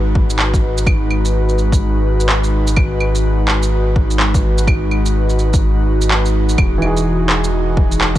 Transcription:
Already playing: sub bass G#1, analog synth pad G#3 D#4 F#4 B4
0.15 kick
0.30 shaker
0.39 clap
0.54 kick, shaker
0.78 shaker
0.87 kick, claves
1.11 claves
1.25 shaker
1.49 shaker
1.58 shaker
1.72 kick, shaker
2.20 shaker
2.29 clap
2.44 shaker
2.67 shaker
2.76 kick, claves
3.00 claves
3.15 shaker
3.48 clap
3.63 shaker
3.96 kick
4.10 shaker
4.20 clap
4.34 kick, shaker
4.58 shaker
4.67 kick, claves
4.91 claves
5.06 shaker
5.29 shaker
5.39 shaker
5.53 kick, shaker
6.01 shaker
6.11 clap
6.26 shaker
6.49 shaker
6.57 sub bass E1, analog synth pad E3 G#4, kick, claves
6.78 upright piano E3 D#4
6.82 upright piano F#4 G#4, claves
6.97 shaker
7.29 clap
7.44 shaker
7.77 kick
7.92 shaker
8.01 clap

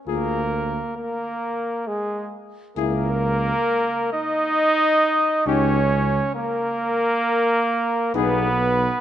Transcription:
0.07 tuba D2, trombone A#3, french horn F4, trumpet G#4, flugelhorn A#4
0.97 trombone A#3, flugelhorn A#4
1.87 trombone G#3, flugelhorn G#4
2.76 tuba C#2, trombone A#3, french horn E4, trumpet G#4, flugelhorn A#4
4.13 trombone D#4, flugelhorn D#5
5.46 tuba C#2, trombone C#4, french horn D#4, trumpet G4, flugelhorn C#5
6.34 trombone A#3, flugelhorn A#4
8.15 tuba B1, trombone B3, french horn D#4, trumpet G#4, flugelhorn B4

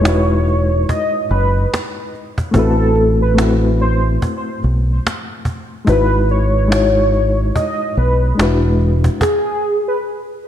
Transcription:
Already playing: fingered electric bass E1, reed electric piano D#4 E4 F#4 B4, soft synth lead C#5
0.00 reed electric piano G#3 D#4
0.05 reed electric piano E4 F#4 B4, cajon slap
0.47 cajon slap
0.89 soft synth lead D#5, cajon bass
1.29 fingered electric bass F#1, soft synth lead B4, cajon slap
1.74 cajon slap
2.14 cajon slap
2.38 cajon bass
2.51 fingered electric bass A1, reed electric piano A3 C4 E4, cajon bass
2.55 reed electric piano F#4 B4, soft synth lead A4
2.96 cajon slap
3.22 soft synth lead B4
3.35 reed electric piano A3 C4, cajon slap
3.39 reed electric piano E4 F#4 B4
3.80 soft synth lead C5, cajon slap
4.22 cajon bass
4.63 fingered electric bass B1, cajon slap
5.07 cajon slap
5.45 cajon bass
5.85 fingered electric bass G#1, reed electric piano G#3 D#4 E4, cajon bass
5.89 reed electric piano F#4 B4, soft synth lead B4
6.28 soft synth lead C#5, cajon slap
6.68 reed electric piano G#3 D#4, cajon slap
6.72 reed electric piano E4 F#4 C#5
7.14 cajon slap
7.55 soft synth lead D#5, cajon bass
7.95 fingered electric bass B1, soft synth lead B4, cajon slap
8.35 fingered electric bass E1, reed electric piano G#3 D4 E4
8.39 reed electric piano F#4 B4, cajon slap
8.80 cajon slap
9.04 cajon bass
9.21 soft synth lead G#4, cajon bass, cajon slap
9.88 soft synth lead B4

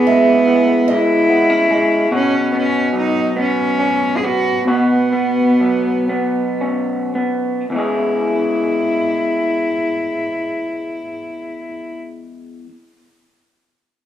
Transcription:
Already playing: clean electric guitar E2 C#4 G#4, cello B3
0.07 clean electric guitar G#3, steel-string acoustic guitar E5
0.48 clean electric guitar E3
0.88 clean electric guitar G#3, steel-string acoustic guitar D#5
0.92 cello E4
1.30 clean electric guitar B3
1.50 clean electric guitar C#4
1.71 clean electric guitar G#3
2.11 clean electric guitar B2 F#4, cello C#4
2.52 clean electric guitar B3
2.57 cello C#4
2.93 clean electric guitar F#3
2.98 cello D#4
3.36 clean electric guitar B3, cello C#4
3.79 clean electric guitar C#4
4.17 cello G#4
4.23 clean electric guitar B3, cello F#4
4.67 clean electric guitar B2 F#4, cello B3
5.13 clean electric guitar B3
5.60 clean electric guitar F#3
6.09 clean electric guitar B3
6.61 clean electric guitar C#4
7.15 clean electric guitar B3
7.70 clean electric guitar E2 E3, cello E4
7.75 clean electric guitar G#3 C#4 G#4

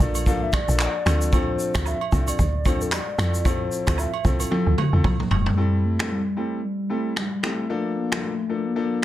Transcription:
Already playing: soft synth lead D5
0.00 log drum bass A#1, grand piano F3 A#3 D4 A4, kick, shaker
0.15 high agogo, shaker
0.26 log drum bass C2, grand piano F3 A#3 D4 A4, soft synth lead F5, kick, shaker
0.42 soft synth lead E5
0.53 soft synth lead D5, finger snap, kick, cross-stick, high agogo, shaker
0.68 log drum bass A#1, grand piano F3 A#3 D4 A4, shaker
0.79 soft synth lead D5, clap, high agogo, low woodblock, shaker
1.06 log drum bass D2, grand piano F3 C4 D4 A4, finger snap, cross-stick, high agogo, shaker
1.21 shaker
1.27 soft synth lead D5
1.32 grand piano F3 C4 D4 A4, soft synth lead C5, kick, high agogo, shaker
1.59 shaker
1.74 log drum bass D2, grand piano F3 C4 A4, finger snap, kick, cross-stick, high agogo, shaker
1.85 soft synth lead E5, low woodblock, shaker
2.01 high agogo
2.12 log drum bass C2, grand piano F3 C4 D4 A4, kick, shaker
2.21 soft synth lead E5
2.28 soft synth lead D5, high agogo, shaker
2.39 log drum bass D2, kick, shaker
2.55 soft synth lead D5
2.65 grand piano F3 C4 D4 A4, soft synth lead C5, kick, high agogo, shaker
2.81 log drum bass E2, soft synth lead A4, shaker
2.92 soft synth lead D5, finger snap, cross-stick, clap, high agogo, low woodblock, shaker
3.18 log drum bass F2, grand piano F3 C4 E4 A4, finger snap, cross-stick, high agogo, shaker
3.34 shaker
3.44 grand piano F3 C4 E4 A4, soft synth lead C5, kick, high agogo, shaker
3.72 shaker
3.87 log drum bass D2, grand piano F3 C4 E4 A4, finger snap, kick, cross-stick, high agogo, shaker
3.98 soft synth lead E5, low woodblock, shaker
4.14 high agogo
4.24 log drum bass C2, grand piano F3 C4 E4 A4, soft synth lead C5, kick, shaker
4.40 soft synth lead A4, high agogo, shaker
4.51 grand piano F3 C4 E4 A4, high tom
4.67 log drum bass D2
4.78 mid tom, high agogo
4.93 log drum bass E2, grand piano F3 C4 E4 A4
5.04 log drum bass C2, soft synth lead F3, kick, mid tom, high agogo, low woodblock
5.20 mid tom
5.31 log drum bass E1, soft synth lead G3, floor tom, high agogo
5.46 floor tom
5.57 grand piano G3 C4 E4 A4
5.85 soft synth lead A3
5.99 grand piano G3 C4 E4 A4, finger snap, cross-stick
6.12 soft synth lead G3
6.37 grand piano G3 C4 E4 A4, soft synth lead A3
6.64 soft synth lead G3
6.90 grand piano G3 C4 E4 A4, soft synth lead A3
7.16 soft synth lead G3, finger snap, cross-stick
7.43 grand piano G3 C4 E4 A4, soft synth lead A3, finger snap, cross-stick
7.69 grand piano F3 A#3 D4 A4
7.97 soft synth lead A#3
8.11 grand piano F3 A#3 D4 A4, finger snap, cross-stick
8.24 soft synth lead A3
8.49 grand piano F3 A#3 D4 A4
8.66 soft synth lead A#3
8.76 grand piano F3 A#3 D4 A4

